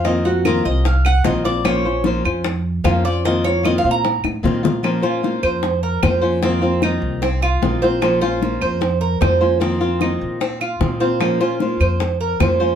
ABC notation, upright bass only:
X:1
M:4/4
L:1/8
Q:1/4=151
K:Fphr
V:1 name="Upright bass" clef=bass
F,,3 C,,3 B,,,2- | B,,,3 F,,3 F,,2- | F,,3 B,,2 =A,, B,,2- | [K:Bbm] B,,3 F,,3 F,,2- |
F,,3 C,,3 B,,,2- | B,,,3 F,,3 F,,2- | F,,3 B,,3 B,,2- | B,,3 F,,3 F,,2 |]